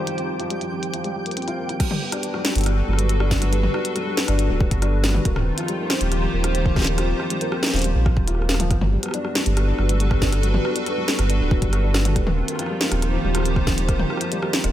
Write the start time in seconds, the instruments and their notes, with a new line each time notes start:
Already playing: analog synth pad D#3 D#4 F4 G4 C5, felt piano F3 G3 C4, synth texture G4 G5
0.07 felt piano F3, closed hi-hat
0.18 felt piano C4, closed hi-hat
0.40 felt piano F3, closed hi-hat
0.50 felt piano G3, closed hi-hat
0.61 felt piano F3, closed hi-hat
0.72 felt piano C4
0.83 closed hi-hat
0.94 felt piano F3, closed hi-hat
1.04 felt piano G3, closed hi-hat
1.15 felt piano F3
1.26 felt piano A#3, closed hi-hat
1.31 closed hi-hat
1.37 felt piano C4, closed hi-hat
1.42 closed hi-hat
1.48 felt piano F4, closed hi-hat
1.58 felt piano A#3
1.69 felt piano F4, closed hi-hat
1.80 felt piano F#3, kick, cross-stick, closed hi-hat, crash
1.91 felt piano G3, high tom
1.95 analog synth pad D4
2.02 felt piano B3
2.11 felt piano D4, analog synth pad F#4 B4, cross-stick, closed hi-hat
2.23 closed hi-hat
2.30 felt piano F#3, analog synth pad A4, cross-stick
2.45 felt piano G3, snare
2.55 sub bass G1, felt piano B3, closed hi-hat
2.58 closed hi-hat
2.61 closed hi-hat
2.64 cross-stick, closed hi-hat
2.66 felt piano D4, closed hi-hat
2.88 sub bass G1, felt piano F#3
2.93 cross-stick
2.99 felt piano G3, closed hi-hat
3.09 felt piano B3, closed hi-hat
3.20 felt piano D4, cross-stick
3.31 kick, snare
3.42 felt piano F#3, cross-stick, closed hi-hat
3.53 felt piano G3, closed hi-hat
3.63 felt piano B3, high tom
3.74 felt piano D4, cross-stick
3.85 closed hi-hat
3.96 felt piano F#3, cross-stick, closed hi-hat
4.07 felt piano G3
4.17 felt piano B3, snare
4.28 sub bass G1, felt piano D4, cross-stick, closed hi-hat
4.39 closed hi-hat
4.50 sub bass D1, felt piano F#3
4.61 felt piano G3, kick
4.71 sub bass G1, felt piano B3, kick, closed hi-hat
4.82 felt piano D4, cross-stick, closed hi-hat
5.04 felt piano F#3, snare
5.09 cross-stick
5.14 felt piano G3, high tom
5.25 sub bass D#1, analog synth pad D#3, felt piano A#3, kick, closed hi-hat
5.30 analog synth pad D#4 F4
5.36 felt piano C4, cross-stick, high tom
5.58 felt piano F3, analog synth pad C5, cross-stick, closed hi-hat
5.63 cross-stick
5.66 felt piano G3, cross-stick, closed hi-hat
5.75 analog synth pad G4
5.79 felt piano A#3
5.90 felt piano C4, cross-stick, snare
6.01 sub bass D#1, closed hi-hat
6.12 felt piano F3, cross-stick, closed hi-hat
6.22 felt piano G3
6.33 sub bass D#1, felt piano A#3
6.44 felt piano C4, cross-stick, closed hi-hat
6.55 closed hi-hat
6.66 felt piano F3, kick
6.76 felt piano G3, kick, snare
6.79 snare
6.82 snare
6.84 felt piano A#3, snare, closed hi-hat
6.98 felt piano C4, cross-stick, closed hi-hat
7.20 felt piano F3, cross-stick
7.30 felt piano G3, closed hi-hat
7.41 felt piano A#3, closed hi-hat
7.52 felt piano C4, cross-stick
7.63 snare
7.66 snare
7.70 sub bass D#1, felt piano F3, snare
7.74 snare, closed hi-hat
7.76 snare, closed hi-hat
7.79 snare, closed hi-hat
7.82 felt piano G3, closed hi-hat
7.84 closed hi-hat
7.95 sub bass A#1, felt piano A#3
8.06 felt piano F3, kick, cross-stick
8.17 sub bass D#1, kick
8.27 felt piano F4, cross-stick, closed hi-hat
8.35 felt piano A#3, cross-stick
8.42 cross-stick
8.49 felt piano A#3, snare
8.54 cross-stick
8.60 sub bass D#1, felt piano F3, closed hi-hat, high tom
8.71 sub bass G1, felt piano B3, kick, cross-stick, closed hi-hat
8.81 felt piano F#3, high tom
8.89 felt piano G3, analog synth pad D4
9.03 felt piano B3, cross-stick, closed hi-hat
9.06 cross-stick
9.08 analog synth pad F#4, cross-stick
9.11 felt piano D4, cross-stick, closed hi-hat
9.25 felt piano B3, analog synth pad A4 B4, cross-stick
9.35 felt piano F#3, snare
9.46 sub bass G1, felt piano G3, closed hi-hat
9.57 felt piano B3, cross-stick, closed hi-hat
9.68 felt piano D4
9.78 sub bass G1, felt piano B3, cross-stick
9.89 felt piano F#3, closed hi-hat
10.00 felt piano G3, closed hi-hat
10.11 felt piano B3, kick, cross-stick
10.22 felt piano D4, kick, snare
10.32 felt piano B3, cross-stick, closed hi-hat
10.43 felt piano F#3, closed hi-hat
10.54 felt piano G3, high tom
10.65 felt piano B3, cross-stick
10.76 felt piano D4, closed hi-hat
10.86 felt piano B3, cross-stick, closed hi-hat
10.97 felt piano F#3
11.08 felt piano G3, snare
11.19 sub bass G1, felt piano B3, cross-stick, closed hi-hat
11.30 felt piano D4, closed hi-hat
11.40 sub bass D1, felt piano B3
11.51 felt piano F#3, kick
11.62 sub bass G1, felt piano G3, kick, closed hi-hat
11.73 felt piano B3, cross-stick, closed hi-hat
11.84 felt piano D4
11.94 felt piano B3, cross-stick, snare
12.05 felt piano F#3, closed hi-hat, high tom
12.16 sub bass D#1, analog synth pad D#3, felt piano G3, kick, closed hi-hat
12.27 felt piano A#3, analog synth pad D#4 F4, high tom
12.38 felt piano C4
12.48 felt piano A#3, cross-stick, closed hi-hat
12.55 cross-stick
12.59 felt piano F3, cross-stick, closed hi-hat
12.63 cross-stick
12.66 felt piano G3, cross-stick
12.77 analog synth pad C5
12.81 felt piano A#3, analog synth pad G4, snare
12.91 sub bass D#1, felt piano C4, cross-stick, closed hi-hat
13.02 felt piano A#3, cross-stick, closed hi-hat
13.13 felt piano F3
13.24 sub bass D#1, felt piano G3
13.35 felt piano A#3, cross-stick, closed hi-hat
13.37 cross-stick
13.40 cross-stick
13.43 felt piano C4, cross-stick, closed hi-hat
13.48 cross-stick
13.51 cross-stick
13.54 felt piano A#3, kick, cross-stick
13.56 cross-stick
13.67 felt piano F3, kick, snare
13.78 felt piano G3, closed hi-hat
13.89 felt piano A#3, kick, cross-stick, closed hi-hat
13.99 felt piano C4, high tom
14.10 felt piano A#3, cross-stick
14.17 felt piano F3, cross-stick, closed hi-hat
14.25 cross-stick
14.32 felt piano G3, closed hi-hat
14.42 felt piano A#3, cross-stick
14.53 felt piano C4, snare
14.64 sub bass D#1, felt piano A#3, cross-stick, closed hi-hat